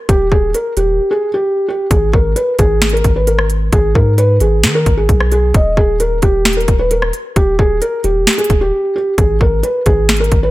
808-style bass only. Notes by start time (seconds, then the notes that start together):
0.09 D#1
0.32 D#1
0.77 D#1
1.91 G#1
2.13 G#1
2.59 G#1
3.04 G#1
3.73 G#1
3.95 G#2
4.41 G#1
4.64 D#3
4.86 G#1
5.09 B1
5.54 D#1
5.77 D#1
6.23 D#1
6.68 D#1
7.36 D#1
7.59 D#1
8.04 D#1
8.50 D#1
9.18 G#1
9.41 G#1
9.86 G#1
10.32 G#1